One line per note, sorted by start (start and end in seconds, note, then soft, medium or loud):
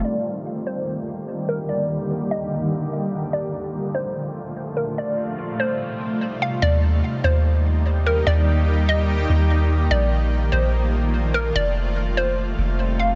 0.05 4.94 D3 medium
0.05 3.30 D#3 medium
0.05 3.30 G3 medium
0.05 3.30 A#3 medium
0.05 3.30 G4 medium
0.05 0.63 D5 medium
0.67 1.45 C5 medium
1.49 1.68 A#4 medium
1.69 2.27 D5 loud
2.31 3.30 D#5 medium
3.33 4.96 A#2 medium
3.33 4.96 F3 medium
3.33 6.59 A3 medium
3.33 6.59 F4 medium
3.33 3.91 D5 medium
3.95 4.73 C5 medium
4.77 4.96 A#4 medium
4.98 6.61 C3 medium
4.98 6.61 G3 medium
4.98 6.61 D#4 medium
4.98 5.56 D5 loud
5.60 6.38 C5 medium
6.42 6.61 F5 medium
6.62 7.02 D#2 loud
6.62 11.51 D#3 medium
6.62 9.88 G3 medium
6.62 9.88 A#3 medium
6.62 9.88 D#4 medium
6.62 9.88 G4 medium
6.62 7.20 D5 loud
7.24 8.23 D#2 loud
7.24 8.02 C5 medium
8.06 8.26 A#4 medium
8.27 9.25 D#2 loud
8.27 8.85 D5 loud
8.89 9.87 D#5 medium
9.29 9.89 D#2 loud
9.91 10.50 A#1 loud
9.91 11.54 F3 medium
9.91 11.54 A3 medium
9.91 11.54 A#3 medium
9.91 13.15 F4 medium
9.91 10.49 D5 loud
10.52 11.51 A#1 loud
10.52 11.31 C5 medium
11.34 11.54 A#4 medium
11.55 12.54 F1 loud
11.55 13.15 D#3 medium
11.55 13.15 G3 medium
11.55 13.15 A3 medium
11.55 13.15 C4 medium
11.55 12.13 D5 loud
12.17 12.95 C5 medium
12.58 13.15 F1 loud
12.99 13.15 F5 medium